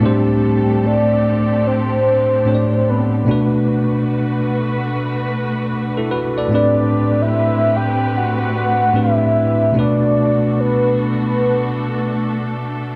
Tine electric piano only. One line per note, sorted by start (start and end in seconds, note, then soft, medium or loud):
0.00 2.41 A2 medium
0.00 2.41 A3 medium
0.00 2.42 C4 medium
0.00 2.42 D4 medium
0.04 2.43 G4 medium
0.04 2.44 C5 medium
2.45 3.27 A2 soft
2.45 3.25 A3 soft
2.45 3.27 C4 soft
2.45 3.27 D4 soft
2.45 3.28 G4 soft
2.45 2.56 C#5 soft
2.55 3.32 D5 medium
3.25 6.46 B2 medium
3.25 6.47 A3 medium
3.25 6.48 D4 medium
3.29 5.68 F#4 medium
3.29 5.69 B4 medium
5.97 6.11 E4 medium
5.97 6.11 A4 medium
6.11 6.37 F#4 medium
6.11 6.36 B4 medium
6.38 6.77 A4 medium
6.38 6.76 D5 medium
6.49 8.89 A2 medium
6.49 8.90 A3 medium
6.49 8.91 C4 medium
6.49 8.91 D4 medium
6.54 8.92 G4 medium
6.54 8.93 B4 medium
8.93 9.75 A2 soft
8.93 9.73 A3 soft
8.93 9.76 C4 soft
8.93 9.74 D4 soft
8.93 9.76 G4 soft
8.93 9.77 B4 medium
9.73 12.95 B2 medium
9.73 12.95 A3 medium
9.73 12.96 D4 medium
9.77 12.96 F#4 medium
9.77 12.96 B4 medium